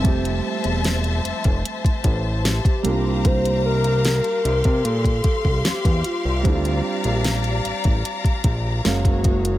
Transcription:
Already playing: string section F3 C5 E5 A5, soft synth lead C4
0.03 analog synth bass F1, felt piano G3 A3 C4, kick, closed hi-hat
0.08 felt piano G4
0.25 closed hi-hat
0.64 analog synth bass E1, closed hi-hat
0.84 snare, closed hi-hat
1.04 closed hi-hat
1.25 analog synth bass F1, closed hi-hat
1.44 analog synth bass F1, kick, closed hi-hat
1.65 closed hi-hat
1.84 analog synth bass A1, kick, closed hi-hat
2.04 analog synth bass A1, kick, closed hi-hat
2.45 soft synth lead G4, snare, closed hi-hat
2.65 kick, closed hi-hat
2.83 analog synth bass C2, felt piano G3 A#3 D4, string section G4 F5 A#5, closed hi-hat
2.88 felt piano F4
3.25 soft synth lead C5, kick, closed hi-hat
3.45 closed hi-hat
3.65 soft synth lead A#4
3.84 closed hi-hat
4.05 snare, closed hi-hat
4.24 closed hi-hat
4.45 analog synth bass C2, string section C6, closed hi-hat
4.64 analog synth bass C3, kick, closed hi-hat
4.85 analog synth bass A#2, soft synth lead A4, closed hi-hat
5.04 kick, closed hi-hat
5.24 kick, closed hi-hat
5.45 analog synth bass C2, kick
5.65 soft synth lead G4, snare, closed hi-hat
5.85 analog synth bass E2, kick, closed hi-hat
6.04 soft synth lead F4, closed hi-hat
6.25 analog synth bass C2
6.43 analog synth bass D2, felt piano G3 C4 D4, soft synth lead G4, string section D5 A#5, kick, closed hi-hat
6.48 felt piano E4
6.55 felt piano F4
6.65 closed hi-hat
7.04 analog synth bass A#1, closed hi-hat
7.24 snare, closed hi-hat
7.44 closed hi-hat
7.65 analog synth bass A1, closed hi-hat
7.84 analog synth bass A1, kick, closed hi-hat
8.05 closed hi-hat
8.24 analog synth bass A#1, kick, closed hi-hat
8.44 analog synth bass A#1, kick, closed hi-hat
8.84 analog synth bass F#1, felt piano G#3 A#3 C#4 F5, string section F#4 C#5, soft synth lead F#4, snare, closed hi-hat
9.05 kick, closed hi-hat
9.24 kick, closed hi-hat, open hi-hat
9.45 closed hi-hat

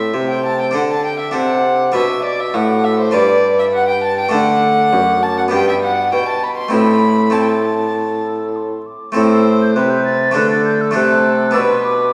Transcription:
Already playing: harpsichord A2 A3 C4 A4, bassoon A2, violin E5, flute C6
0.14 harpsichord C3, bassoon C3
0.30 violin G5
0.46 violin A5
0.61 violin G5
0.71 harpsichord D3 D4 A4, bassoon D3, flute D6
0.75 violin F#5
0.91 violin A5
1.05 violin G5
1.19 violin E5
1.31 harpsichord C3 D4 A4, bassoon C3, violin F#5
1.36 flute D6
1.92 harpsichord B2 D4 B4, bassoon B2, violin E5, flute D6
2.25 violin D5
2.40 violin E5
2.54 harpsichord A2, bassoon A2, violin F#5, flute D6
2.84 violin E5
3.00 violin C5
3.11 harpsichord G2 D4 B4, bassoon G2, violin D5, flute B5
3.59 violin E5
3.73 violin F#5
3.89 violin G5
4.04 violin A5
4.20 violin G5
4.29 harpsichord D3 A3 D4 A4
4.33 bassoon D3, violin F#5, flute D6
4.93 harpsichord F#2, bassoon F#2
5.23 violin A5
5.38 violin F#5
5.48 harpsichord G2 B3 D4 G4, flute B5
5.53 bassoon G2, violin G5
5.69 violin E5
5.82 violin F#5
6.12 harpsichord B2, bassoon B2, violin G5, flute B5
6.29 violin A5
6.44 violin B5
6.57 violin C6
6.68 harpsichord A2 A3 C4 E4, flute C6
6.73 bassoon A2, violin B5
7.30 harpsichord A3 C4 E4, violin A5, flute C6
7.42 violin G5
7.48 violin A5
8.26 flute E6
8.56 flute C6
8.86 flute D6
9.12 harpsichord A2 A3 C4 A4
9.16 bassoon A2, violin C5, flute E6
9.62 flute G6
9.75 harpsichord C3, bassoon C3, violin B4, flute F#6
9.90 flute G6
10.05 flute A6
10.31 harpsichord D3 A3 D4 A4
10.35 bassoon D3, violin A4, flute F#6
10.51 flute A6
10.65 flute G6
10.81 flute E6
10.91 harpsichord A3 D4 A4, flute F#6
10.95 harpsichord C3, bassoon C3, violin A4
11.51 harpsichord B3 D4 D5, flute E6
11.55 harpsichord B2, bassoon B2, violin B4
11.70 flute C6
11.85 flute D6

